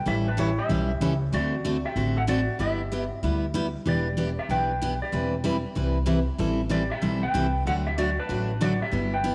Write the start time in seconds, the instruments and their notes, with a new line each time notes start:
0.06 upright bass A1, steel-string acoustic guitar E3 G3 C#4 E4 A4, electric slide guitar G4 E5
0.28 electric slide guitar D4 B4
0.37 steel-string acoustic guitar E3 G3 C#4 E4 A4, electric slide guitar E4 C#5
0.58 electric slide guitar G4 E5
0.69 upright bass B1, steel-string acoustic guitar E3 G3 C#4 E4 A4
1.01 upright bass C#2, steel-string acoustic guitar E3 G3 C#4 E4 A4
1.32 upright bass D2, steel-string acoustic guitar D3 A3 C4 F#4 A4, electric slide guitar F#4 D5
1.65 steel-string acoustic guitar D3 A3 C4 F#4 A4
1.85 electric slide guitar G4 E5
1.96 upright bass A1, steel-string acoustic guitar D3 A3 C4 F#4 A4
2.17 electric slide guitar A4 F#5
2.27 steel-string acoustic guitar D3 A3 C4 F#4 A4, electric slide guitar F#4 D5
2.59 upright bass G1, steel-string acoustic guitar G3 B3 E4 G4, electric slide guitar G4 E5
2.92 steel-string acoustic guitar G3 B3 E4 G4
3.23 upright bass D2, steel-string acoustic guitar G3 B3 E4 G4
3.54 steel-string acoustic guitar G3 B3 E4 G4
3.86 upright bass E1, steel-string acoustic guitar E3 B3 D4 G4, electric slide guitar G4 D5
4.17 steel-string acoustic guitar E3 B3 D4 G4
4.39 electric slide guitar G4 E5
4.49 upright bass B1, steel-string acoustic guitar E3 B3 D4 G4, electric slide guitar B4 G5
4.82 steel-string acoustic guitar E3 B3 D4 G4
5.02 electric slide guitar G4 D5
5.12 upright bass E1, steel-string acoustic guitar E3 G3 C4 E4 B4
5.44 steel-string acoustic guitar E3 G3 C4 E4 B4
5.75 upright bass C2, steel-string acoustic guitar E3 G3 C4 E4 B4
6.06 steel-string acoustic guitar E3 G3 C4 E4 B4
6.38 upright bass A1, steel-string acoustic guitar E3 G3 C4 E4 A4
6.69 steel-string acoustic guitar E3 G3 C4 E4 A4, electric slide guitar G4 D5
6.92 electric slide guitar G4 E5
7.02 upright bass B1, steel-string acoustic guitar E3 G3 C4 E4 A4
7.23 electric slide guitar B4 G5
7.34 upright bass C2, steel-string acoustic guitar E3 G3 C4 E4 A4
7.66 upright bass D2, steel-string acoustic guitar D3 F#3 A3 D4 F#4, electric slide guitar A4 F#5
7.87 electric slide guitar G4 E5
7.98 steel-string acoustic guitar D3 F#3 A3 D4 F#4, electric slide guitar F#4 D5
8.19 electric slide guitar D4 B4
8.29 upright bass A1, steel-string acoustic guitar D3 F#3 A3 D4 F#4
8.61 steel-string acoustic guitar D3 F#3 A3 D4 F#4, electric slide guitar F#4 D5
8.82 electric slide guitar G4 E5
8.92 upright bass G1, steel-string acoustic guitar G3 B3 E4 G4
9.14 electric slide guitar B4 G5
9.24 steel-string acoustic guitar G3 B3 E4 G4